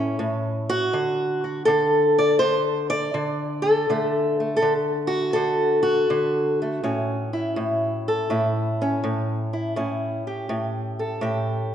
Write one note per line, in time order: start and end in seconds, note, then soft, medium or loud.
0.00 0.18 A2 medium
0.00 0.90 C#4 soft
0.00 0.90 E4 soft
0.00 0.69 A4 soft
0.19 0.90 A2 medium
0.69 1.43 F#4 medium
0.93 1.67 D3 medium
1.44 1.65 F#4 soft
1.65 2.41 D3 medium
1.65 2.90 A4 medium
2.18 2.39 D5 medium
2.39 3.13 D3 medium
2.39 2.89 C5 medium
2.90 4.37 D5 medium
3.14 3.85 D3 medium
3.62 4.55 A4 medium
3.90 4.61 D3 medium
3.90 4.40 A3 medium
4.40 6.61 A3 soft
4.57 4.73 A4 medium
4.62 5.34 D3 medium
5.07 5.81 F#4 medium
5.33 6.09 D3 medium
5.33 6.58 A4 medium
5.83 8.04 F#4 medium
6.10 6.80 D3 medium
6.62 6.84 A3 soft
6.84 7.56 A2 medium
6.84 8.80 C#4 medium
7.33 8.30 E4 soft
7.56 8.30 A2 medium
8.08 9.75 A4 medium
8.30 9.02 A2 medium
8.30 9.53 E4 soft
8.82 9.75 C#4 soft
9.04 9.74 A2 medium
9.53 10.27 E4 soft
9.76 10.48 A2 medium
9.76 11.72 C#4 medium
10.27 11.21 G4 soft
10.49 11.20 A2 medium
10.99 11.75 A4 soft
11.21 11.75 A2 medium
11.21 11.75 G4 soft